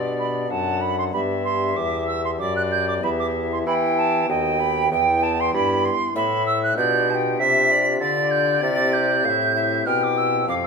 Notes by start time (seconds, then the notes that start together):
Already playing: B2 B3 D4 G4 D5
0.18 B5
0.47 D4 A4 F#5 A5
0.51 F#2
0.81 B5
0.98 C6
1.11 G2 B3 D4 G4 E5 B5
1.15 G2
1.44 C6
1.76 E2 D6
2.07 E6
2.24 C6
2.39 F#2 D5 D6
2.56 F#6
2.71 G6
2.88 D6
2.98 B3 E4 G4
3.03 E2 E5 B5
3.19 D6
3.52 C6
3.66 E3 G5 B5
3.97 A5
4.24 B3 F#4 B4
4.29 D#2 D#5 G5
4.60 B5
4.87 B3 E4 B4
4.91 E2 G5
5.23 A5
5.40 C6
5.54 G2 B5
5.85 C6
6.15 A2 E5 B5
6.46 E6
6.63 F#6
6.72 D4 F4 G4
6.77 B2 D5 G6
7.10 A5
7.14 G5
7.39 C3 E5 B6
7.71 D5
7.99 D3 D5 A6
8.31 G6
8.59 C3 C4 E4 G4 A6
8.93 G6
9.25 A2 F5
9.29 E5
9.55 E5
9.86 B2 G5 F6
10.03 D6
10.17 E6
10.44 C4 F4 A4
10.48 F2 F5 D6
10.63 E6